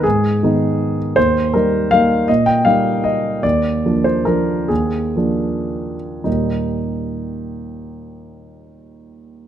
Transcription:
grand piano
0.03 G#2 G#4
0.43 D#3 B3 D#4
1.16 D#2 C5
1.54 G3 A#3 D#4 A#4
1.91 G3 A#3 D#4 F5
2.28 A#2 D#5
2.46 G5
2.65 G3 A#3 D#4 F5
3.04 D#5
3.43 D#2 D5
3.86 F3 A#3 D4
4.04 C5
4.25 F3 A#3 D4 A#4
4.68 D#2 G#4
5.16 F3 A#3 D4
6.24 D#2 A#2 G3 A#3 D#4

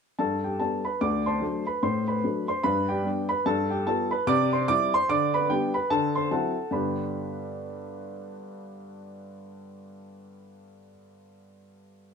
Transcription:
upright piano
0.19 G2 A4 A5
0.44 G4 G5
0.60 G3 B3 D4 A4 A5
0.85 B4 B5
1.01 D2 D5 D6
1.26 C5 A5 C6
1.41 F#3 A3 D4
1.67 B4 B5
1.83 A2 C5 C6
2.08 B4 B5
2.24 F#3 A3 D4
2.48 C5 C6
2.63 G2 B4 B5
2.89 G4 D5 G5
3.05 G3 B3 D4
3.29 B4 B5
3.46 G2 A4 A5
3.70 G4 G5
3.87 G3 B3 F4 A4 A5
4.11 B4 B5
4.27 C3 D5 D6
4.53 C5 C6
4.68 G3 C4 E4 D5 D6
4.94 C5 C6
5.09 D3 D5 D6
5.34 B4 B5
5.50 G3 B3 D4 G4 G5
5.74 B4 B5
5.90 D3 A4 A5
6.15 C5 C6
6.31 F#3 C4 E4 A4 F#5 A5
6.71 G2 D3 B3 D4 G4 B4 B5

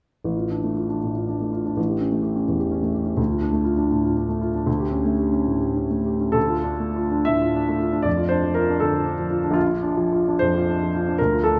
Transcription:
grand piano
0.24 A1
0.37 F4
0.51 D4
0.64 A3
0.76 F4
0.89 D4
1.03 A2
1.16 F4
1.28 D4
1.41 A3
1.53 F4
1.65 D4
1.77 A1
1.89 G4
2.01 C#4
2.12 A3
2.23 G4
2.36 C#4
2.48 E2
2.59 G4
2.71 C#4
2.82 A3
2.94 G4
3.05 C#4
3.17 D2
3.30 F4
3.41 D4
3.52 A3
3.64 F4
3.77 D4
3.91 A2
4.04 F4
4.17 D4
4.29 A3
4.41 F4
4.55 D4
4.66 D2
4.80 G4
4.92 C#4
5.05 A3
5.19 G4
5.32 C#4
5.46 A2
5.60 G4
5.75 C#4
5.90 A3
6.06 G4
6.20 C#4
6.32 D2 A4
6.48 F4
6.64 D4
6.80 A3
6.96 F4
7.11 D4
7.25 A2 E5
7.42 F4
7.55 D4
7.69 A3
7.80 F4
7.93 D4
8.02 F2 D5
8.17 F4
8.29 D4 C5
8.44 F3
8.54 F4 A#4
8.70 D4
8.80 D3 A4
8.94 F4
9.06 D4
9.19 F3
9.31 F4
9.44 D4
9.51 A#1 F4
9.67 F4
9.83 D4
9.97 F3
10.12 F4
10.28 D4
10.39 F2 C5
10.56 F4
10.69 D4
10.83 F3
10.95 F4
11.08 D4
11.18 D2 A#4
11.33 F4
11.43 D4 A4

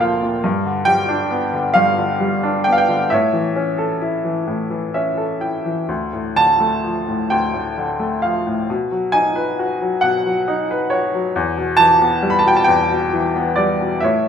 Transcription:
upright piano
Already playing: D2 A#2 D3 A#3 G5 A5
0.00 F3 F5
0.22 A#2
0.44 G2
0.65 D3
0.85 G3 G5
1.09 D4
1.30 B3
1.53 D3
1.74 G2 F5
1.98 D3
2.20 G3
2.43 D4
2.64 B3 G5
2.73 F5
2.78 G5
2.89 D3
3.10 A2 C#5 E5
3.33 E3
3.56 C#4
3.78 A4
4.01 E4
4.25 E3
4.47 A2
4.70 E3
4.94 C#4 E5
5.17 A4
5.41 E4 G5
5.65 E3
5.89 D2
6.13 A2
6.36 D3 A5
6.60 A3
6.84 F3
7.08 A2
7.30 D2 G5
7.54 A2
7.78 D3
8.00 A3
8.22 F3 F5
8.47 A2
8.70 B2
8.91 F#3
9.12 D#4 G#5
9.36 B4
9.59 F#4
9.82 F#3
10.01 B2 F#5
10.26 F#3
10.48 D#4
10.71 B4
10.90 F#4 C#5
11.14 F#3
11.36 E2
11.57 B2
11.77 E3 A5
12.01 B3
12.23 G3
12.30 B5
12.39 A5
12.45 B2 G5
12.56 A5
12.64 E2 G5
12.90 B2
13.13 E3
13.36 B3
13.56 G3 D5
13.80 B2
14.00 A2 C#5 E5

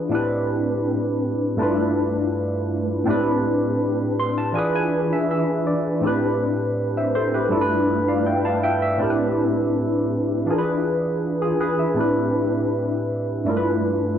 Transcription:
tine electric piano
Already playing: E3 D4 F4 G#4 B4
0.09 A2 B3 D4 E4
0.14 C4 G4 B4
1.57 G2 A3 D4
1.61 E4 F4 B4
3.04 A2 C4 D4
3.08 E4 G4 B4
4.20 C6
4.38 A5
4.53 E3 D4 F4 G#5
4.57 G#4 B4
4.75 G#5
5.13 E5
5.31 E5
5.67 D5
6.01 A2 C4 D4 E4
6.06 G4 B4
6.97 C5 E5
7.15 A4 C5
7.34 G4 B4
7.49 G2 A3 D4 E4
7.53 F4 A4
7.61 B4
8.08 D5 F5
8.26 E5 G5
8.45 F5 A5
8.63 E5 G5
8.82 E5
8.98 A2 C4 D4 E4
9.02 G4 A#4
9.10 B4
10.46 E3 D4 F4
10.50 G#4 A#4
10.58 B4
11.42 F4 G#4
11.60 G#4 B4
11.79 E5
11.94 A2 C4 D4 E4
11.99 G4 B4
13.44 G2 A3 D4 E4
13.49 F4 A#4
13.57 B4

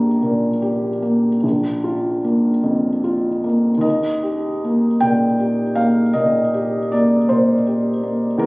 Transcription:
felt piano
Already playing: A#1 A#3 G4 A#4
0.22 A#2
0.62 G4
1.02 A#3
1.43 A#1
1.84 F4
2.24 A#3
2.63 F2
3.04 F4
3.44 A#3
3.77 D#2 D#5
4.23 G4
4.64 A#3
5.00 A#2 G5
5.40 G4
5.75 A#3 F5
6.13 A#2 D#5
6.54 G4
6.92 A#3 D5
7.29 A#2 C5
7.67 G4
8.03 A#3
8.38 E2 A#4

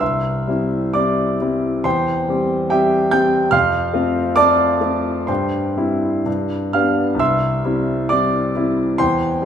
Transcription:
grand piano
0.00 C2 E5 C6 E6
0.48 G3 C4 E4
0.94 G3 C4 E4 D5 D6
1.41 G3 C4 E4
1.84 E2 C5 G5 C6
2.28 G3 C4 G4
2.70 G3 C4 G4 E5 G5
3.11 G3 C4 G4 G5 G6
3.51 F2 F5 C6 F6
3.94 A3 C4 F4
4.36 A3 C4 F4 D5 A5 D6
4.81 A3 C4 F4
5.27 G2 C5 G5 C6
5.77 G3 C4 E4
6.26 G2
6.73 G3 B3 D4 F5 F6
7.15 C2
7.19 E5 C6 E6
7.65 G3 C4 E4
8.09 G3 C4 E4 D5 D6
8.55 G3 C4 E4
8.98 E2 C5 G5 C6
9.42 G3

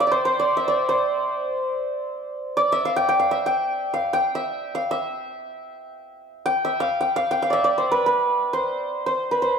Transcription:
santur
Already playing: E5 G5
0.00 D5
0.07 D5
0.12 C5
0.25 C5
0.39 D5
0.57 E5
0.68 D5
0.89 C5
2.57 D5
2.72 E5
2.85 F5
2.96 G5
3.09 G5
3.19 F5
3.31 E5
3.46 G5
3.94 F5
4.13 G5
4.35 E5
4.75 F5
4.91 E5
6.46 G5
6.65 E5
6.80 F5
7.01 G5
7.16 F5
7.31 G5
7.42 F5
7.50 D5 E5
7.64 D5
7.78 C5
7.92 B4
8.06 B4
8.53 C5
9.06 C5
9.31 B4
9.42 C5

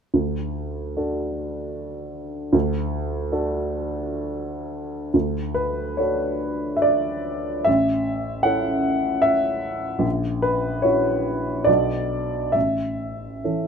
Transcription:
upright piano
0.14 D2
0.97 D4 F#4 A4
2.53 D2
3.32 D4 F#4 A4
5.14 D2
5.54 B4
5.97 D4 F#4 A4 C#5
6.77 E5
6.82 D5
7.64 A1 E5
8.43 C#4 E4 A4 F#5
9.22 E5
9.99 A#1
10.42 B4
10.82 C#4 E4 F#4 C#5
11.64 B1 B3 D4 F#4 D5
12.52 A1 E5
13.44 E3 C#4 A4

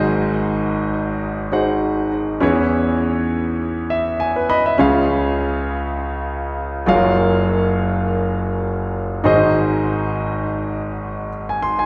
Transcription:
grand piano
Already playing: G#1 G#2 D#4 F#4 G#4 C5 D#5
1.52 D#4 F#4 G#4 C5 F#5
2.40 E2 E3 C#4 E4 G#4 B4 C#5
3.90 E5
4.20 G#5
4.36 B4
4.50 D#5 B5
4.66 E5
4.78 C#2 C#3 C#4 F4 G#4 C#5 F5
6.86 F#1 F#2 F4 F#4 G#4 C#5 F5
6.94 A#4
9.24 G#1 G#2 D#4 F#4 G#4 C5 D#5
11.49 G#5
11.62 C6
11.79 G#5

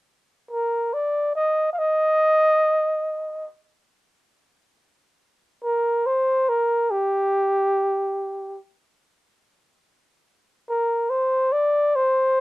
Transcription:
flugelhorn
0.51 A#4
0.94 D5
1.35 D#5
1.73 F5
1.79 D#5
5.64 A#4
6.06 C5
6.49 A#4
6.91 G4
10.70 A#4
11.10 C5
11.52 D5
11.96 C5

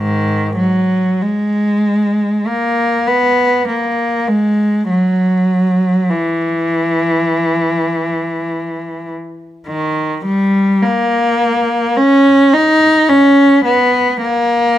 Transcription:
cello
Already playing: G#2 D#3
0.57 F#3
1.22 G#3
2.47 A#3
3.08 B3
3.68 A#3
4.28 G#3
4.90 F#3
6.10 E3
9.67 D#3
10.25 G3
10.83 A#3
11.97 C#4
12.53 D#4
13.09 C#4
13.65 B3
14.22 A#3

